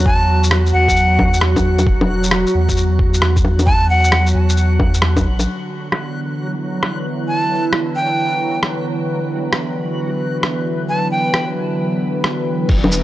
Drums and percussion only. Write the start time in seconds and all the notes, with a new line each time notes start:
0.06 kick
0.44 shaker
0.51 cross-stick
0.66 shaker
0.88 kick, shaker
0.96 shaker
1.19 kick, low bongo
1.34 shaker
1.41 cross-stick
1.56 kick, low bongo, shaker
1.79 low bongo, shaker
1.87 kick
2.01 low bongo
2.23 shaker
2.31 cross-stick
2.47 shaker
2.69 kick, shaker
2.77 shaker
2.99 kick
3.14 shaker
3.22 cross-stick
3.36 kick, shaker
3.45 low bongo
3.59 low bongo, shaker
3.67 kick
4.04 shaker
4.12 cross-stick
4.27 shaker
4.49 shaker
4.57 shaker
4.79 kick, low bongo
4.94 shaker
5.02 cross-stick
5.17 kick, low bongo, shaker
5.39 low bongo, shaker
5.92 cross-stick
6.83 cross-stick
7.73 cross-stick
8.63 cross-stick
9.53 cross-stick
10.43 cross-stick
11.34 cross-stick
12.24 cross-stick
12.69 kick, crash
12.84 low bongo
12.92 cabasa